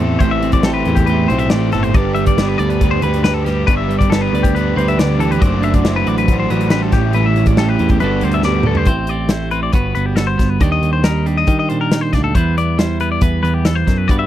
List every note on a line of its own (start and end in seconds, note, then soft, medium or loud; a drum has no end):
0.00 0.17 E2 medium
0.00 1.70 A2 medium
0.00 0.21 A3 medium
0.00 0.22 C4 medium
0.00 0.22 E4 medium
0.00 0.65 G4 medium
0.00 0.19 A4 medium
0.00 0.23 C5 medium
0.19 0.82 A1 medium
0.19 0.64 A2 medium
0.19 0.65 E3 medium
0.19 1.50 A3 medium
0.19 0.65 A3 medium
0.19 0.30 C5 medium
0.19 kick medium
0.19 closed hi-hat medium
0.23 0.66 C4 medium
0.23 0.67 E4 medium
0.23 0.68 C5 medium
0.31 0.53 E5 medium
0.42 1.70 C4 soft
0.42 closed hi-hat soft
0.52 0.64 D5 medium
0.52 kick medium
0.52 closed hi-hat medium
0.63 1.30 A2 medium
0.63 1.30 E3 medium
0.63 1.07 A3 medium
0.63 1.09 C4 medium
0.63 1.09 G4 medium
0.63 0.73 A4 medium
0.63 snare loud
0.63 closed hi-hat medium
0.68 1.09 E4 medium
0.68 1.11 C5 medium
0.74 0.96 B4 medium
0.85 1.26 E2 medium
0.85 1.28 E4 medium
0.85 closed hi-hat medium
0.95 1.07 G4 medium
0.95 kick medium
0.95 closed hi-hat medium
1.06 1.33 A3 medium
1.06 1.31 C4 medium
1.06 2.59 G4 medium
1.06 1.28 B4 medium
1.06 closed hi-hat medium
1.11 1.31 E4 medium
1.11 1.29 C5 medium
1.28 1.49 B1 medium
1.28 1.70 E4 soft
1.28 1.53 E4 medium
1.28 1.38 C5 medium
1.28 1.54 C5 medium
1.28 closed hi-hat medium
1.33 1.51 A3 medium
1.33 1.52 C4 medium
1.38 1.50 E5 medium
1.38 closed hi-hat medium
1.50 1.71 A1 medium
1.50 1.70 A3 medium
1.50 1.75 A3 medium
1.50 1.74 C4 medium
1.50 1.72 D5 medium
1.50 snare loud
1.50 closed hi-hat medium
1.54 1.73 E4 medium
1.54 1.72 C5 medium
1.72 1.92 G1 medium
1.72 1.92 A2 medium
1.72 1.95 A3 medium
1.72 1.94 C4 medium
1.72 1.94 E4 medium
1.72 1.83 A4 medium
1.72 1.93 C5 medium
1.72 snare soft
1.72 closed hi-hat medium
1.83 1.94 C5 medium
1.83 closed hi-hat medium
1.94 2.56 G1 medium
1.94 3.66 G2 medium
1.94 2.37 G3 medium
1.94 2.38 B3 medium
1.94 2.39 D4 medium
1.94 2.40 G4 medium
1.94 2.41 B4 medium
1.94 2.14 D5 medium
1.94 kick loud
1.94 closed hi-hat medium
2.15 3.45 G3 medium
2.15 2.26 E5 medium
2.15 closed hi-hat medium
2.26 2.49 D5 medium
2.26 kick medium
2.26 closed hi-hat medium
2.38 3.03 G3 medium
2.38 4.11 B3 medium
2.38 2.81 B3 medium
2.38 2.82 D4 medium
2.38 2.82 G4 medium
2.38 2.84 B4 medium
2.38 snare loud
2.38 closed hi-hat medium
2.49 2.58 B4 medium
2.58 2.99 D2 medium
2.58 2.70 D5 medium
2.58 3.03 D5 soft
2.58 closed hi-hat medium
2.70 2.91 B4 medium
2.70 closed hi-hat medium
2.81 3.24 B3 medium
2.81 3.06 D4 medium
2.81 3.03 G4 medium
2.81 3.02 B4 medium
2.81 kick medium
2.81 closed hi-hat medium
2.91 3.02 C5 medium
3.02 3.64 D2 medium
3.02 3.26 G4 medium
3.02 3.23 B4 medium
3.02 3.27 B4 medium
3.02 4.34 B4 medium
3.02 closed hi-hat medium
3.07 3.25 D4 medium
3.14 closed hi-hat medium
3.24 3.69 B3 medium
3.24 3.49 D4 medium
3.24 3.47 G4 medium
3.24 3.34 B4 medium
3.24 3.46 B4 medium
3.24 snare medium
3.24 closed hi-hat medium
3.34 3.44 A4 medium
3.44 3.65 G3 medium
3.44 3.67 G4 medium
3.44 3.70 G4 medium
3.44 3.71 B4 medium
3.44 snare soft
3.44 closed hi-hat medium
3.49 3.70 D4 medium
3.67 4.29 G1 medium
3.67 5.41 G2 medium
3.67 4.09 G3 medium
3.67 4.11 B3 medium
3.67 4.12 D4 medium
3.67 3.77 B4 medium
3.67 kick medium
3.67 closed hi-hat soft
3.71 4.12 G4 medium
3.71 4.14 B4 medium
3.77 3.98 E5 medium
3.89 5.38 G3 medium
3.89 closed hi-hat soft
3.99 4.10 D5 medium
3.99 kick medium
3.99 closed hi-hat medium
4.10 4.76 G3 medium
4.10 4.53 B3 medium
4.10 5.39 B3 medium
4.10 4.54 D4 medium
4.10 4.55 G4 medium
4.10 4.21 A4 medium
4.10 snare loud
4.10 closed hi-hat soft
4.14 4.56 B4 loud
4.21 4.43 B4 medium
4.33 4.73 D2 medium
4.33 4.76 D5 soft
4.33 closed hi-hat medium
4.43 4.54 G4 medium
4.43 kick medium
4.43 closed hi-hat medium
4.54 4.97 B3 medium
4.54 4.78 D4 medium
4.54 4.77 G4 medium
4.54 4.76 B4 medium
4.54 4.75 B4 medium
4.54 closed hi-hat soft
4.76 5.37 D2 medium
4.76 4.99 D4 soft
4.76 5.00 G4 medium
4.76 5.39 B4 medium
4.76 5.01 B4 medium
4.76 4.88 C5 medium
4.76 closed hi-hat medium
4.88 4.99 E5 medium
4.88 closed hi-hat medium
4.98 5.19 D3 medium
4.98 5.40 B3 medium
4.98 5.23 D4 medium
4.98 5.21 G4 medium
4.98 5.20 D5 medium
4.98 snare loud
4.98 closed hi-hat medium
5.02 5.20 B4 medium
5.19 5.41 E3 medium
5.19 5.41 G4 medium
5.19 5.31 A4 medium
5.19 5.41 B4 medium
5.19 closed hi-hat medium
5.25 5.42 D4 medium
5.31 5.41 B4 medium
5.31 closed hi-hat medium
5.40 6.03 F#1 medium
5.40 6.49 F#3 medium
5.40 5.83 F#3 medium
5.40 5.85 A3 medium
5.40 5.85 D4 medium
5.40 5.64 D5 medium
5.40 kick loud
5.40 closed hi-hat medium
5.45 5.85 F#4 medium
5.45 5.86 C5 medium
5.62 6.90 D4 medium
5.62 5.75 E5 medium
5.62 closed hi-hat medium
5.74 5.96 D5 medium
5.74 kick medium
5.74 closed hi-hat medium
5.84 6.49 F#3 medium
5.84 6.28 A3 medium
5.84 6.28 D4 medium
5.84 6.91 E4 medium
5.84 6.30 F#4 medium
5.84 6.31 C5 medium
5.84 snare loud
5.84 closed hi-hat medium
5.96 6.07 B4 medium
6.06 6.46 A1 medium
6.06 6.28 B4 medium
6.06 6.18 D5 medium
6.06 closed hi-hat medium
6.18 6.39 B4 medium
6.18 closed hi-hat medium
6.28 6.71 A3 medium
6.28 6.52 D4 medium
6.28 6.51 F#4 medium
6.28 6.49 C5 medium
6.28 kick medium
6.28 closed hi-hat medium
6.40 6.50 C5 medium
6.50 6.90 A1 medium
6.50 6.70 F#3 medium
6.50 6.71 D4 medium
6.50 6.72 F#4 medium
6.50 6.70 B4 medium
6.50 6.73 C5 medium
6.50 closed hi-hat medium
6.61 closed hi-hat medium
6.70 6.93 G3 medium
6.70 6.94 A3 medium
6.70 6.92 D4 medium
6.70 6.92 F#4 medium
6.70 6.82 B4 medium
6.70 snare loud
6.70 closed hi-hat medium
6.75 6.93 C5 medium
6.82 6.93 A4 medium
6.92 7.76 A1 medium
6.92 7.99 A2 medium
6.92 7.14 E3 medium
6.92 7.15 G3 medium
6.92 7.16 C#4 medium
6.92 7.16 E4 medium
6.92 7.14 G4 medium
6.92 kick medium
6.92 snare soft
6.92 closed hi-hat medium
6.96 7.13 A2 medium
7.13 7.57 A2 medium
7.13 7.58 E3 medium
7.13 7.59 G3 medium
7.13 7.99 A3 medium
7.13 7.60 C#4 medium
7.13 7.25 B4 medium
7.13 closed hi-hat medium
7.18 7.60 E4 medium
7.26 7.47 E5 medium
7.36 7.99 C#4 soft
7.36 closed hi-hat medium
7.46 7.58 D5 medium
7.46 kick medium
7.46 closed hi-hat medium
7.57 8.00 A2 medium
7.57 8.00 E3 medium
7.57 8.01 G3 medium
7.57 8.01 C#4 medium
7.57 8.02 G4 medium
7.57 7.69 A4 medium
7.57 snare loud
7.57 closed hi-hat medium
7.61 8.01 E4 medium
7.69 7.90 B4 medium
7.79 7.99 E2 medium
7.79 7.99 E4 medium
7.79 closed hi-hat soft
7.89 8.00 G4 medium
7.89 kick medium
7.89 closed hi-hat soft
8.00 8.21 G1 medium
8.00 8.44 G2 medium
8.00 8.86 G2 medium
8.00 8.43 D3 medium
8.00 8.21 G3 soft
8.00 8.25 G3 medium
8.00 8.43 B3 medium
8.00 8.23 B3 medium
8.00 8.86 F#4 soft
8.00 8.65 A4 medium
8.00 8.23 B4 medium
8.00 closed hi-hat medium
8.04 8.22 D4 medium
8.21 8.84 D2 medium
8.21 8.85 G3 medium
8.21 8.46 B3 medium
8.21 8.47 D4 medium
8.21 8.34 C5 medium
8.21 closed hi-hat medium
8.26 8.45 G3 medium
8.32 8.44 E5 medium
8.32 closed hi-hat medium
8.42 8.87 D3 medium
8.42 8.68 G3 medium
8.42 8.85 B3 medium
8.42 8.66 D5 medium
8.42 snare medium
8.47 8.66 B3 medium
8.47 8.64 D4 medium
8.63 8.87 B3 medium
8.63 8.86 D4 medium
8.63 8.85 A4 soft
8.63 8.77 A4 medium
8.63 mid tom medium
8.69 8.88 G3 medium
8.75 8.86 C5 medium
8.75 floor tom medium
8.85 9.70 A1 medium
8.85 9.71 A2 medium
8.85 9.08 C4 soft
8.85 9.29 E4 soft
8.85 9.75 G4 medium
8.85 9.09 C5 medium
8.85 kick medium
8.85 closed hi-hat medium
9.07 9.52 C4 soft
9.07 9.30 D5 medium
9.07 closed hi-hat medium
9.29 9.71 A3 medium
9.29 9.71 E4 medium
9.29 9.51 C5 medium
9.29 snare medium
9.29 closed hi-hat medium
9.51 9.72 C4 soft
9.51 9.62 B4 medium
9.51 closed hi-hat soft
9.63 9.72 D5 medium
9.72 9.94 G1 medium
9.72 10.61 G2 medium
9.72 9.95 B3 soft
9.72 10.17 F#4 soft
9.72 9.94 B4 medium
9.72 10.59 B4 soft
9.72 kick medium
9.72 closed hi-hat medium
9.95 10.36 G1 medium
9.95 10.37 B3 medium
9.95 10.06 B4 medium
9.95 closed hi-hat medium
10.06 10.16 G4 medium
10.16 11.03 G3 medium
10.16 10.59 F#4 soft
10.16 10.28 A4 medium
10.16 snare medium
10.16 closed hi-hat medium
10.27 10.50 C5 medium
10.38 10.59 G1 medium
10.38 10.58 B3 medium
10.38 kick medium
10.38 snare soft
10.38 closed hi-hat soft
10.50 10.61 B4 medium
10.60 10.81 D#2 medium
10.60 12.32 D#3 medium
10.60 10.82 D4 medium
10.60 11.03 D#4 medium
10.60 11.47 G4 soft
10.60 10.71 D5 medium
10.60 kick medium
10.60 closed hi-hat medium
10.72 10.92 D#5 medium
10.82 11.43 D#2 medium
10.82 11.25 D4 soft
10.82 closed hi-hat soft
10.93 11.04 C5 medium
11.04 12.78 G3 medium
11.04 11.91 D#4 medium
11.04 11.27 A#4 medium
11.04 snare medium
11.04 closed hi-hat medium
11.26 11.70 D4 soft
11.26 11.37 G4 medium
11.26 closed hi-hat soft
11.37 11.58 D#5 medium
11.47 12.15 D#3 medium
11.47 12.37 G4 medium
11.47 kick medium
11.47 closed hi-hat medium
11.59 11.69 D#5 medium
11.69 12.33 A#2 medium
11.69 12.13 D4 medium
11.69 11.80 C5 medium
11.69 closed hi-hat medium
11.81 12.01 A#4 medium
11.91 12.33 D#4 medium
11.91 snare medium
11.91 closed hi-hat medium
12.01 12.13 C5 medium
12.13 12.33 D2 medium
12.13 12.33 D4 medium
12.13 12.23 D5 medium
12.13 kick medium
12.13 snare soft
12.13 closed hi-hat medium
12.24 12.35 A4 medium
12.35 13.18 E2 medium
12.35 13.42 E3 medium
12.35 12.58 B3 medium
12.35 12.78 E4 soft
12.35 13.21 B4 medium
12.35 12.57 C5 medium
12.35 kick medium
12.35 closed hi-hat medium
12.58 13.00 B3 medium
12.58 12.79 D5 medium
12.58 closed hi-hat medium
12.78 13.86 G3 medium
12.78 14.07 E4 medium
12.78 13.00 C5 medium
12.78 snare medium
12.78 closed hi-hat medium
13.00 13.43 B3 medium
13.00 13.11 B4 medium
13.00 closed hi-hat medium
13.12 13.22 D5 medium
13.21 13.42 E2 medium
13.21 14.06 B4 medium
13.21 13.42 B4 medium
13.21 kick medium
13.21 closed hi-hat medium
13.43 13.83 E2 medium
13.43 13.64 E3 medium
13.43 14.06 B3 medium
13.43 13.54 B4 medium
13.43 closed hi-hat medium
13.54 13.65 G4 medium
13.65 13.87 E3 medium
13.65 13.75 A4 medium
13.65 snare medium
13.65 closed hi-hat medium
13.75 13.98 C5 medium
13.87 14.08 F#2 medium
13.87 14.09 F#3 medium
13.87 kick medium
13.87 snare soft
13.87 closed hi-hat medium
13.98 14.08 B4 medium
14.08 14.27 G2 medium
14.08 14.27 B3 soft
14.08 14.27 F#4 medium
14.08 14.27 B4 medium
14.08 14.19 D5 medium
14.08 kick medium
14.08 closed hi-hat medium
14.19 14.27 E5 medium